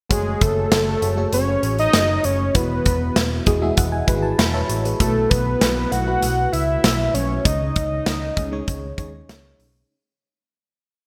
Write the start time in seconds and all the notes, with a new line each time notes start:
0.10 F#1 A3 F#4 G#4 C#5, kick, closed hi-hat
0.41 F#1 A4, kick, closed hi-hat
0.71 F#1, snare, closed hi-hat
1.01 F#1 A3 F#4 G#4 C#5, closed hi-hat
1.17 A3 F#4 G#4 C#5
1.33 F#1 C#5, closed hi-hat
1.63 A1, closed hi-hat
1.79 D#5, closed hi-hat
1.93 F#1, snare, closed hi-hat
2.24 F#1 C#5, closed hi-hat
2.54 E1 E3 G#3 E4 F#4 B4, kick, closed hi-hat
2.86 E1, kick, closed hi-hat
3.16 E1, snare, closed hi-hat
3.46 E1 G#3 E4 F#4 G#4 D#5, kick, closed hi-hat
3.62 G#3 E4 F#4 G#4 E5
3.77 E1 F#5, kick, closed hi-hat
3.92 G#5
4.07 G#1 G#3 E4 F#4 B4, kick, closed hi-hat
4.23 A5
4.38 E1 B5, snare, closed hi-hat
4.53 C#5 E5 A5
4.69 A1 C#5, closed hi-hat
4.85 G#4 B4, closed hi-hat
5.00 B1 B2 A3 E4 F#4 A4 B4, kick, closed hi-hat
5.30 B1 B4, kick, closed hi-hat
5.61 B1, snare, closed hi-hat
5.91 B1 A3 E4 F#4 B4 F#5, closed hi-hat
6.06 A3 E4 F#4 B4
6.23 B1, closed hi-hat
6.53 C#2 E5, closed hi-hat
6.84 B1, snare, closed hi-hat
7.14 B1 C#5, closed hi-hat
7.45 C#2 C#3 G#3 C#4 D#4 C#5 D#5, kick, closed hi-hat
7.76 C#2, kick, closed hi-hat
8.06 C#2, snare, closed hi-hat
8.36 C#2 G#3 C#4 D#4 G#4, kick, closed hi-hat
8.52 G#3 C#4 D#4 C#5
8.68 C#2, kick, closed hi-hat
8.98 D#2 G#3 C#4 D#4 C#5, kick, closed hi-hat
9.29 C#2, snare, closed hi-hat
9.59 B1, open hi-hat